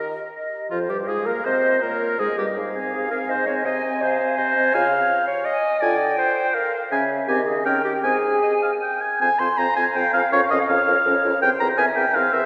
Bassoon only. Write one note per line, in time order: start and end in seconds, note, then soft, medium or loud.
0.00 0.13 D#3 soft
0.71 0.91 F2 soft
0.90 1.07 G2 soft
1.08 1.28 G#2 soft
1.26 1.45 A#2 soft
1.45 1.84 C3 soft
1.82 2.19 A#2 soft
2.19 2.27 G#2 soft
2.38 2.56 G2 soft
2.57 2.89 G#2 soft
2.93 3.25 G#2 soft
3.29 3.61 G#2 soft
3.65 3.97 C3 soft
4.02 4.34 C3 medium
4.38 4.70 C3 soft
4.74 5.04 C#3 medium
5.82 6.12 D3 medium
6.92 7.22 C#3 medium
7.28 7.59 D#3 medium
7.66 7.98 D#3 medium
8.04 8.37 G#2 medium
9.21 9.30 F2 medium
9.40 9.48 F2 medium
9.58 9.67 F2 medium
9.77 9.85 F2 soft
9.96 10.04 F2 soft
10.14 10.22 F2 medium
10.33 10.41 F2 medium
10.51 10.59 F2 medium
10.69 10.77 F2 medium
10.87 10.95 F2 soft
11.06 11.14 F2 medium
11.24 11.33 F2 medium
11.42 11.50 E2 medium
11.61 11.69 E2 medium
11.78 11.86 E2 medium
11.96 12.05 E2 medium
12.15 12.23 E2 medium
12.33 12.41 E2 medium